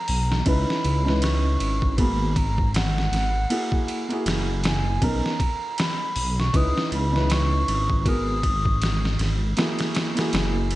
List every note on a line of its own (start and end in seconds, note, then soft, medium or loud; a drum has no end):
0.00 0.47 A#5 loud
0.08 0.43 B1 medium
0.08 open hi-hat medium
0.32 snare medium
0.45 0.65 C#2 loud
0.45 1.00 C#4 medium
0.45 1.01 D#4 medium
0.45 1.01 E4 medium
0.45 1.02 B4 medium
0.45 1.25 B5 loud
0.45 kick loud
0.45 ride medium
0.70 snare medium
0.85 1.57 C#2 loud
0.85 ride medium
1.05 1.95 C#4 medium
1.05 1.96 D#4 medium
1.05 1.97 E4 medium
1.05 snare soft
1.09 1.98 B4 loud
1.22 1.98 C#6 loud
1.22 snare loud
1.22 ride medium
1.60 3.09 G#1 medium
1.60 ride medium
1.82 kick loud
1.98 2.31 A#3 medium
1.98 2.30 B3 medium
1.98 2.30 F#4 medium
1.98 2.31 G#4 medium
1.98 2.38 B5 loud
1.98 kick loud
1.98 ride medium
2.36 2.74 A#5 loud
2.36 kick loud
2.36 ride medium
2.58 kick medium
2.74 4.35 F#5 loud
2.74 snare loud
2.74 ride medium
2.98 snare medium
3.12 3.46 G#1 medium
3.12 snare soft
3.12 ride medium
3.49 4.04 A#3 medium
3.49 4.05 E4 medium
3.49 4.05 F#4 medium
3.49 4.05 G#4 medium
3.49 ride medium
3.72 kick medium
3.88 ride medium
4.09 4.99 A#3 medium
4.09 5.00 E4 medium
4.09 5.01 F#4 medium
4.09 ride soft
4.13 5.01 G#4 loud
4.26 4.99 F#1 medium
4.26 snare loud
4.26 ride medium
4.64 5.05 G#5 medium
4.64 snare loud
4.64 ride medium
5.01 5.21 B1 loud
5.01 5.33 B3 medium
5.01 5.34 C#4 medium
5.01 5.34 D#4 medium
5.01 5.35 A#4 loud
5.01 5.82 A#5 loud
5.01 kick loud
5.01 ride medium
5.26 snare medium
5.40 kick loud
5.40 ride medium
5.78 6.41 B5 loud
5.78 snare loud
5.78 ride medium
6.16 6.50 B1 medium
6.16 open hi-hat medium
6.40 6.58 C#6 loud
6.40 snare medium
6.53 6.73 C#2 medium
6.53 7.08 C#4 medium
6.53 7.08 D#4 medium
6.53 7.09 E4 medium
6.53 7.09 B4 loud
6.53 6.93 D#6 loud
6.53 kick loud
6.53 ride medium
6.78 snare medium
6.92 7.65 C#2 medium
6.92 7.34 B5 loud
6.92 ride medium
7.12 8.03 C#4 medium
7.12 8.03 D#4 medium
7.12 8.04 E4 medium
7.16 8.05 B4 loud
7.16 snare soft
7.30 8.10 C#6 loud
7.30 snare loud
7.30 ride medium
7.68 9.17 G#1 medium
7.68 ride medium
7.90 kick loud
8.05 8.37 B3 medium
8.05 8.37 F#4 medium
8.05 8.38 G#4 medium
8.05 8.38 A#4 loud
8.05 9.21 D#6 loud
8.05 kick loud
8.05 ride medium
8.43 kick loud
8.43 ride medium
8.65 kick medium
8.82 snare loud
8.82 ride medium
9.05 snare medium
9.19 9.54 G#1 medium
9.19 snare soft
9.19 ride medium
9.57 10.12 A#3 medium
9.57 10.12 E4 medium
9.57 10.12 F#4 medium
9.57 10.13 G#4 medium
9.57 snare loud
9.57 ride medium
9.79 snare loud
9.79 ride medium
9.95 snare loud
9.95 ride medium
10.15 10.75 A#3 medium
10.15 10.75 E4 medium
10.15 10.75 F#4 medium
10.15 ride medium
10.19 10.75 G#4 medium
10.19 snare loud
10.33 10.75 F#1 medium
10.33 snare loud
10.33 ride medium
10.71 ride medium